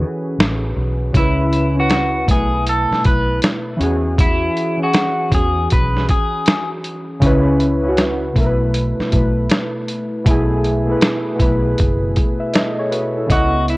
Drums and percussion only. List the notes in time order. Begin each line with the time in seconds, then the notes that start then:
0.40 snare
1.14 kick, closed hi-hat
1.53 closed hi-hat
1.90 snare, closed hi-hat
2.28 kick, closed hi-hat
2.67 closed hi-hat
2.93 snare
3.05 kick, closed hi-hat
3.42 snare, closed hi-hat
3.81 closed hi-hat
4.18 kick, closed hi-hat
4.57 closed hi-hat
4.94 snare, closed hi-hat
5.32 kick, closed hi-hat
5.70 kick, closed hi-hat
5.96 snare
6.08 kick, closed hi-hat
6.46 snare, closed hi-hat
6.84 closed hi-hat
7.22 kick, closed hi-hat
7.60 closed hi-hat
7.97 snare, closed hi-hat
8.36 kick, closed hi-hat
8.74 closed hi-hat
9.00 snare
9.12 kick, closed hi-hat
9.49 snare, closed hi-hat
9.88 closed hi-hat
10.26 kick, closed hi-hat
10.64 closed hi-hat
11.01 snare, closed hi-hat
11.40 kick, closed hi-hat
11.78 kick, closed hi-hat
12.16 kick, closed hi-hat
12.54 snare, closed hi-hat
12.93 closed hi-hat
13.30 kick, closed hi-hat
13.68 closed hi-hat